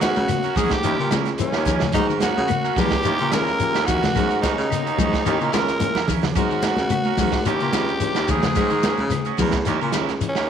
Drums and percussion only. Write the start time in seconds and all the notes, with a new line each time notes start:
0.01 snare, closed hi-hat, high conga, shekere
0.16 high conga, shekere
0.28 snare, closed hi-hat, high conga, claves, shekere
0.43 closed hi-hat, shekere
0.55 kick, open hi-hat, high conga, low conga, shekere
0.70 kick, snare, closed hi-hat, shekere
0.83 snare, closed hi-hat, claves, shekere
1.00 shekere
1.11 snare, closed hi-hat, high conga, claves, shekere
1.25 snare, closed hi-hat, shekere
1.38 closed hi-hat, shekere
1.52 snare, claves, shekere
1.65 kick, closed hi-hat, low conga, shekere
1.80 snare, high conga, low conga, shekere
1.92 kick, closed hi-hat, claves, shekere
2.10 shekere
2.20 snare, closed hi-hat, high conga, shekere
2.38 high conga, shekere
2.48 closed hi-hat, high conga, claves, shekere
2.65 shekere
2.76 kick, snare, open hi-hat, high conga, low conga, shekere
2.91 kick, snare, shekere
3.03 closed hi-hat, claves, shekere
3.18 closed hi-hat, shekere
3.31 snare, closed hi-hat, high conga, claves, shekere
3.47 snare, shekere
3.60 closed hi-hat, shekere
3.75 snare, closed hi-hat, claves, shekere
3.88 kick, closed hi-hat, low conga, shekere
4.03 snare, closed hi-hat, high conga, low conga, shekere
4.16 kick, snare, closed hi-hat, claves, shekere
4.30 closed hi-hat, shekere
4.43 kick, snare, closed hi-hat, high conga, shekere
4.59 snare, shekere
4.70 snare, closed hi-hat, claves, shekere
4.87 closed hi-hat, shekere
4.99 kick, closed hi-hat, high conga, low conga, shekere
5.13 kick, snare, closed hi-hat, shekere
5.26 snare, closed hi-hat, claves, shekere
5.41 shekere
5.53 snare, closed hi-hat, high conga, claves, shekere
5.68 snare, closed hi-hat, shekere
5.80 closed hi-hat, high conga, shekere
5.95 snare, low conga, claves, shekere
6.08 kick, open hi-hat, low conga, shekere
6.23 snare, low conga, shekere
6.35 kick, closed hi-hat, claves, shekere
6.51 shekere
6.63 snare, closed hi-hat, high conga, shekere
6.77 snare, high conga, shekere
6.90 closed hi-hat, high conga, claves, shekere
7.04 shekere
7.17 kick, open hi-hat, high conga, low conga, shekere
7.32 kick, snare, shekere
7.45 closed hi-hat, claves, shekere
7.60 closed hi-hat, shekere
7.73 snare, closed hi-hat, high conga, claves, shekere
7.88 shekere
8.00 closed hi-hat, shekere
8.15 snare, closed hi-hat, claves, shekere
8.28 kick, closed hi-hat, high conga, low conga, shekere
8.43 snare, closed hi-hat, high conga, low conga, shekere
8.55 kick, snare, closed hi-hat, claves, shekere
8.70 closed hi-hat, shekere
8.83 snare, closed hi-hat, high conga, shekere
8.97 high conga, shekere
9.10 snare, closed hi-hat, high conga, claves, shekere
9.25 closed hi-hat, shekere
9.37 kick, open hi-hat, high conga, low conga, shekere
9.51 kick, snare, closed hi-hat, shekere
9.65 snare, closed hi-hat, claves, shekere
9.81 shekere
9.92 snare, closed hi-hat, high conga, claves, shekere
10.08 snare, closed hi-hat, shekere
10.21 closed hi-hat, shekere
10.35 snare, claves, shekere